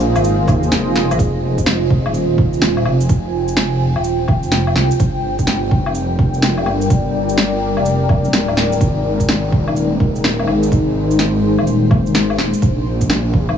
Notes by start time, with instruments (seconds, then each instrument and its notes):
Already playing: detuned saw bass A#1, analog synth pad A#3 F4 G#4 C5 D#5
0.00 cabasa
0.16 detuned saw bass G#1, low woodblock, shaker
0.24 shaker
0.48 detuned saw bass D#2, kick, cabasa, low woodblock
0.63 shaker
0.72 detuned saw bass F1, snare, shaker
0.96 snare, cabasa
1.11 detuned saw bass A#1, low woodblock, shaker
1.19 detuned saw bass F1, kick, shaker
1.58 kick, shaker
1.66 snare, shaker
1.90 analog synth pad G5, kick
2.06 detuned saw bass D#1, low woodblock
2.14 shaker
2.20 analog synth pad G#5
2.38 kick
2.53 shaker
2.62 snare, shaker
2.77 low woodblock
2.85 detuned saw bass F1, low woodblock
3.01 shaker
3.09 detuned saw bass F1, kick, shaker
3.48 shaker
3.57 snare, shaker
3.96 detuned saw bass D#1, low woodblock
4.04 shaker
4.28 kick, low woodblock
4.43 detuned saw bass F1, shaker
4.52 snare, shaker
4.67 low woodblock
4.76 detuned saw bass C2, snare
4.91 shaker
5.00 detuned saw bass G1, analog synth pad G3, kick, shaker
5.39 kick, shaker
5.44 analog synth pad A#4, snare, shaker
5.71 kick
5.86 detuned saw bass F1, low woodblock
5.95 analog synth pad D5, shaker
6.19 kick
6.34 shaker
6.42 snare, shaker
6.58 low woodblock
6.66 detuned saw bass G1, low woodblock
6.81 shaker
6.90 detuned saw bass G1, kick, shaker
7.29 shaker
7.38 snare, shaker
7.77 detuned saw bass F1, low woodblock
7.86 shaker
8.09 kick, low woodblock
8.25 detuned saw bass D1, shaker
8.33 snare, shaker
8.48 low woodblock
8.57 snare
8.72 shaker
8.80 detuned saw bass G#1, analog synth pad G#3, kick, shaker
8.89 analog synth pad D#4
9.20 kick, shaker
9.29 snare, shaker
9.52 kick
9.68 detuned saw bass D#1, low woodblock
9.73 analog synth pad C5, shaker
10.00 kick
10.16 shaker
10.24 snare, shaker
10.39 low woodblock
10.47 detuned saw bass G#1, low woodblock
10.63 shaker
10.72 detuned saw bass G#1, kick, shaker
11.11 shaker
11.19 snare, shaker
11.59 detuned saw bass D#1, low woodblock
11.67 shaker
11.91 kick, low woodblock
12.06 detuned saw bass G#1, shaker
12.15 snare, shaker
12.30 low woodblock
12.38 detuned saw bass D#1, snare
12.53 shaker
12.62 detuned saw bass A#1, analog synth pad A#3, kick, shaker
12.80 analog synth pad F4 D#5
13.01 kick, shaker
13.08 analog synth pad G#4, snare, shaker
13.34 kick
13.49 detuned saw bass G#1, low woodblock